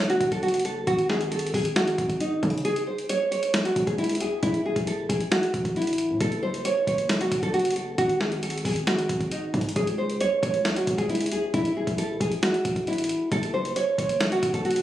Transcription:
Already playing: 808-style bass F#1
0.10 nylon-string guitar F#4, closed hi-hat
0.21 808-style bass F#1, kick, closed hi-hat
0.32 nylon-string guitar A4, kick, closed hi-hat
0.43 nylon-string guitar F#4, closed hi-hat
0.48 closed hi-hat
0.54 closed hi-hat
0.59 closed hi-hat
0.65 nylon-string guitar A4, closed hi-hat
0.87 808-style bass G#1, nylon-string guitar F#4, kick, closed hi-hat
0.98 closed hi-hat
1.10 nylon-string guitar G#4, snare
1.21 closed hi-hat
1.31 nylon-string guitar A4, closed hi-hat
1.39 closed hi-hat
1.47 closed hi-hat
1.54 808-style bass G#1, nylon-string guitar G#4, kick, open hi-hat
1.65 closed hi-hat
1.76 nylon-string guitar F#4, snare, closed hi-hat
1.87 closed hi-hat
1.98 808-style bass G#1, kick, closed hi-hat
2.09 kick, closed hi-hat
2.20 nylon-string guitar D#4, closed hi-hat
2.43 808-style bass C#3, kick, closed hi-hat
2.50 closed hi-hat
2.58 closed hi-hat
2.65 nylon-string guitar G#4, closed hi-hat
2.76 closed hi-hat
2.87 nylon-string guitar C5
2.98 closed hi-hat
3.09 nylon-string guitar C#5, closed hi-hat
3.31 nylon-string guitar C#5, closed hi-hat
3.43 closed hi-hat
3.54 snare, closed hi-hat
3.65 nylon-string guitar F#4, closed hi-hat
3.76 808-style bass C#2, kick, closed hi-hat
3.87 808-style bass C#2, nylon-string guitar G#4, kick, closed hi-hat
3.98 nylon-string guitar E4, closed hi-hat
4.04 closed hi-hat
4.09 closed hi-hat
4.15 closed hi-hat
4.20 nylon-string guitar G#4, closed hi-hat
4.43 808-style bass A1, nylon-string guitar E4, kick, closed hi-hat
4.54 closed hi-hat
4.66 nylon-string guitar G#4
4.76 808-style bass A1, kick, closed hi-hat
4.87 nylon-string guitar A4, closed hi-hat
5.09 808-style bass A1, nylon-string guitar G#4, kick, closed hi-hat
5.20 closed hi-hat
5.31 nylon-string guitar F#4, snare, closed hi-hat
5.43 closed hi-hat
5.54 808-style bass A1, kick, closed hi-hat
5.65 808-style bass A1, kick, closed hi-hat
5.76 nylon-string guitar E4, closed hi-hat
5.82 closed hi-hat
5.87 closed hi-hat
5.93 closed hi-hat
5.98 closed hi-hat
6.09 808-style bass A2
6.21 808-style bass F#1, nylon-string guitar A4, kick, closed hi-hat
6.32 closed hi-hat
6.43 nylon-string guitar C5
6.54 closed hi-hat
6.65 nylon-string guitar C#5, closed hi-hat
6.87 808-style bass F#1, nylon-string guitar C#5, kick, closed hi-hat
6.98 closed hi-hat
7.09 snare, closed hi-hat
7.21 nylon-string guitar F#4, closed hi-hat
7.32 808-style bass F#1, kick, closed hi-hat
7.43 nylon-string guitar A4, kick, closed hi-hat
7.54 nylon-string guitar F#4, closed hi-hat
7.59 closed hi-hat
7.65 closed hi-hat
7.71 closed hi-hat
7.76 nylon-string guitar A4, closed hi-hat
7.98 808-style bass G#1, nylon-string guitar F#4, kick, closed hi-hat
8.09 closed hi-hat
8.21 nylon-string guitar G#4, snare
8.32 closed hi-hat
8.43 nylon-string guitar A4, closed hi-hat
8.50 closed hi-hat
8.58 closed hi-hat
8.65 808-style bass G#1, nylon-string guitar G#4, kick, open hi-hat
8.76 closed hi-hat
8.87 nylon-string guitar F#4, snare, closed hi-hat
8.99 closed hi-hat
9.09 808-style bass G#1, kick, closed hi-hat
9.21 kick, closed hi-hat
9.31 nylon-string guitar D#4, closed hi-hat
9.54 808-style bass G#2, kick, closed hi-hat
9.61 closed hi-hat
9.69 closed hi-hat
9.76 808-style bass C#2, nylon-string guitar G#4, kick, closed hi-hat
9.87 closed hi-hat
9.98 nylon-string guitar C5
10.10 closed hi-hat
10.21 nylon-string guitar C#5, closed hi-hat
10.43 808-style bass C#2, nylon-string guitar C#5, kick, closed hi-hat
10.54 closed hi-hat
10.65 snare, closed hi-hat
10.76 nylon-string guitar F#4, closed hi-hat
10.87 808-style bass C#2, kick, closed hi-hat
10.98 nylon-string guitar G#4, kick, closed hi-hat
11.09 nylon-string guitar E4, closed hi-hat
11.15 closed hi-hat
11.21 closed hi-hat
11.26 closed hi-hat
11.32 nylon-string guitar G#4, closed hi-hat
11.54 808-style bass A1, nylon-string guitar E4, kick, closed hi-hat
11.65 closed hi-hat
11.77 nylon-string guitar G#4
11.87 808-style bass A1, kick, closed hi-hat
11.98 nylon-string guitar A4, closed hi-hat
12.21 808-style bass A1, nylon-string guitar G#4, kick, closed hi-hat
12.32 closed hi-hat
12.43 nylon-string guitar F#4, snare, closed hi-hat
12.54 closed hi-hat
12.65 808-style bass A1, kick, closed hi-hat
12.76 kick, closed hi-hat
12.87 nylon-string guitar E4, closed hi-hat
12.93 closed hi-hat
12.98 closed hi-hat
13.04 closed hi-hat
13.09 closed hi-hat
13.32 808-style bass F#1, nylon-string guitar A4, kick, closed hi-hat
13.43 closed hi-hat
13.54 nylon-string guitar C5
13.65 closed hi-hat
13.76 nylon-string guitar C#5, closed hi-hat
13.98 808-style bass F#1, nylon-string guitar C#5, kick, closed hi-hat
14.09 closed hi-hat
14.20 snare, closed hi-hat
14.32 nylon-string guitar F#4, closed hi-hat
14.43 808-style bass F#1, kick, closed hi-hat
14.54 nylon-string guitar A4, kick, closed hi-hat
14.65 nylon-string guitar F#4, closed hi-hat
14.71 closed hi-hat
14.76 closed hi-hat

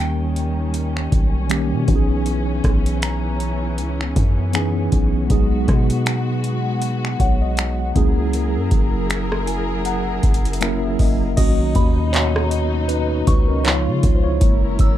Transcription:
Already playing: 808-style bass D#2, tine electric piano D#3 G3 A#3 C#4 G4, string section D#3 G3 C#4
0.00 synth bell G5
0.36 closed hi-hat
0.74 closed hi-hat
0.97 finger snap
1.12 808-style bass B1, kick, closed hi-hat
1.48 tine electric piano D#3 G3 A#3 C#4 G4, finger snap, closed hi-hat
1.73 808-style bass B2
1.87 808-style bass B1, tine electric piano E3 B3 C#4 D#4 F#4, string section E3 B3, kick, closed hi-hat
1.96 tine electric piano G#4
2.26 closed hi-hat
2.64 808-style bass B1, kick, cross-stick, closed hi-hat
2.86 closed hi-hat
3.02 synth bell A#5, finger snap, closed hi-hat
3.40 closed hi-hat
3.78 808-style bass C#2, closed hi-hat
4.01 finger snap
4.16 808-style bass F#2, kick, closed hi-hat
4.53 tine electric piano E3 B3 C#4 D#4 G#4, synth bell G#5, finger snap, closed hi-hat
4.92 808-style bass B1, kick, closed hi-hat
5.29 808-style bass B1, tine electric piano F#3 G#3 B3 D#4 G#4, string section G#3 F#4, kick, closed hi-hat
5.68 808-style bass B2, kick, cross-stick, closed hi-hat
5.90 closed hi-hat
6.06 finger snap, closed hi-hat
6.44 closed hi-hat
6.82 closed hi-hat
7.05 finger snap
7.20 808-style bass B1, tine electric piano C#5, synth bell F#5, kick, closed hi-hat
7.42 tine electric piano D#5
7.57 finger snap, closed hi-hat
7.79 tine electric piano F#5
7.94 808-style bass C#2, tine electric piano F#3 A#3 C#4 E4 G#4, string section F#3 E4 G#4 A#4, kick, closed hi-hat
8.33 closed hi-hat
8.56 808-style bass F#2
8.71 808-style bass F#1, kick, closed hi-hat
9.10 finger snap, closed hi-hat
9.32 cross-stick
9.47 tine electric piano G#5, closed hi-hat
9.85 tine electric piano F#5, closed hi-hat
10.23 808-style bass F#1, kick, closed hi-hat
10.34 closed hi-hat
10.45 closed hi-hat
10.53 closed hi-hat
10.60 tine electric piano F#3 A#3 C#4 E4 A#4 E5, finger snap, closed hi-hat
10.99 808-style bass F#1, tine electric piano D#5, kick, open hi-hat
11.37 808-style bass B1, string section B2 F#3 D#4, tine electric piano D#3 A#3 C#4 F#4 D#5, kick, closed hi-hat, crash
11.75 808-style bass D#2, synth bell B5, kick, closed hi-hat
12.13 tine electric piano F#4 C#5, clap, closed hi-hat
12.36 cross-stick
12.51 closed hi-hat
12.88 tine electric piano D#4 B4, closed hi-hat
13.27 808-style bass C#2, synth bell C#6, kick, closed hi-hat
13.48 tine electric piano C#4 A#4
13.64 string section C#3 G#3 F4, tine electric piano F3 B3 D#4 F4 C#5, clap, closed hi-hat
13.88 808-style bass C#3
14.03 808-style bass C#2, kick, closed hi-hat
14.15 tine electric piano C5
14.24 tine electric piano E4 C#5
14.41 808-style bass F#1, string section F#3 C#4 E4 A#4, tine electric piano G#3 A#3 E4, kick, closed hi-hat
14.79 808-style bass F#1, synth bell E6, kick, closed hi-hat

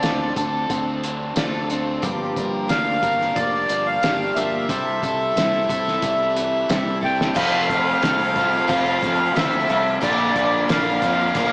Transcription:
Already playing: overdriven electric guitar D3 F3 A4, accordion D5
0.02 fingered electric bass D2, twelve-string acoustic guitar F3 C4 D4 A4, overdriven electric guitar F4, snare, closed hi-hat
0.36 fingered electric bass D2, twelve-string acoustic guitar C4 D4 A4, overdriven electric guitar A4, kick, closed hi-hat
0.70 fingered electric bass D2, overdriven electric guitar C4, kick, closed hi-hat
1.03 overdriven electric guitar D3, closed hi-hat
1.36 fingered electric bass D2, twelve-string acoustic guitar F3 C4 D4 A4, overdriven electric guitar F4, snare, closed hi-hat
1.70 overdriven electric guitar C4, twelve-string acoustic guitar C4 D4 A4, closed hi-hat
2.02 fingered electric bass G1, twelve-string acoustic guitar G2 D3 F3 A#3 D4 G4, overdriven electric guitar G2, kick, closed hi-hat
2.36 fingered electric bass G1, overdriven electric guitar A#4, kick, closed hi-hat
2.68 fingered electric bass D2, twelve-string acoustic guitar F3 A#3 D4 G4, accordion F5, snare, closed hi-hat
2.72 overdriven electric guitar D4
3.01 fingered electric bass G1, twelve-string acoustic guitar F3 A#3 D4 G4, overdriven electric guitar A#4, kick, closed hi-hat
3.21 snare
3.35 fingered electric bass F1, overdriven electric guitar A#3, accordion D5, kick, closed hi-hat
3.69 fingered electric bass G1, overdriven electric guitar F3, closed hi-hat
3.87 accordion F5
4.02 fingered electric bass G1, twelve-string acoustic guitar F3 A#3 D4 G4, overdriven electric guitar D4, snare, closed hi-hat
4.35 fingered electric bass G1, twelve-string acoustic guitar F3 A#3 D4 G4, overdriven electric guitar A#3, accordion E5, closed hi-hat
4.69 fingered electric bass C2, overdriven electric guitar C3, twelve-string acoustic guitar C3 G3 C4 E4 A4, kick, closed hi-hat
5.03 fingered electric bass C2, overdriven electric guitar A4, kick, closed hi-hat
5.36 fingered electric bass C2, twelve-string acoustic guitar G3 C4 E4 A4, overdriven electric guitar E4, snare, closed hi-hat
5.69 fingered electric bass C2, twelve-string acoustic guitar C4 E4 A4, overdriven electric guitar A4, kick, closed hi-hat
5.88 snare
6.02 fingered electric bass C2, overdriven electric guitar G3, kick, closed hi-hat
6.36 overdriven electric guitar E3, closed hi-hat
6.69 fingered electric bass C2, twelve-string acoustic guitar G3 C4 E4 A4, overdriven electric guitar E4, snare, closed hi-hat
7.01 overdriven electric guitar G3, twelve-string acoustic guitar C4 E4 A4, accordion G5, kick
7.21 snare
7.34 fingered electric bass F1, overdriven electric guitar F2 C3, twelve-string acoustic guitar F3 C4 F4 A4, string section C4 F4 A4 C5, accordion F5, kick, crash, shaker
7.39 overdriven electric guitar F3 A3 C4 F4
7.69 kick, crash, shaker
8.01 fingered electric bass C2, twelve-string acoustic guitar F3 C4 F4 A4, snare, crash, shaker
8.36 overdriven electric guitar A3 C4 F4, kick, crash, shaker
8.40 overdriven electric guitar F2 C3 F3
8.67 fingered electric bass F1, twelve-string acoustic guitar F3 C4 F4 A4, accordion F5, kick, crash, shaker
9.03 fingered electric bass F2, kick, snare, crash, shaker
9.35 fingered electric bass D2, twelve-string acoustic guitar F3 C4 F4 A4, accordion E5, snare, crash, shaker
9.69 fingered electric bass C2, twelve-string acoustic guitar C4 F4 A4, crash, shaker
10.01 fingered electric bass A#1, twelve-string acoustic guitar A#2 D3 F3 A#3 D4 A#4, overdriven electric guitar A#2 D3, string section D4 F4 A#4 D5, accordion D5, kick, crash, shaker
10.05 overdriven electric guitar A#3 D4 F4
10.36 fingered electric bass A#1, kick, crash, shaker
10.68 fingered electric bass A#1, twelve-string acoustic guitar F3 A#3 D4 A#4, accordion F5, snare, crash, shaker
11.01 fingered electric bass F2, twelve-string acoustic guitar F3 A#3 D4 A#4, overdriven electric guitar A#3 D4 F4, kick, crash, shaker
11.06 overdriven electric guitar A#2 D3
11.35 fingered electric bass A#1, twelve-string acoustic guitar A#2 D3 F3 A#3 D4 A#4, kick, crash, shaker

